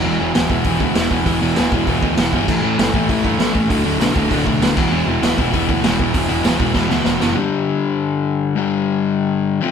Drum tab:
CC |--------|--------|x-------|-------x|
HH |--o-o-o-|o-o-o-o-|--o-o-o-|o-o-o-o-|
SD |--o---o-|--o---o-|--o---o-|--o---o-|
BD |---ooo-o|o--ooo-o|o--ooo-o|o--ooo-o|

CC |--------|--------|--------|--------|
HH |--o-o-o-|o-o-----|--------|--------|
SD |--o---o-|--o-oooo|--------|--------|
BD |---ooo-o|o--oo---|--------|--------|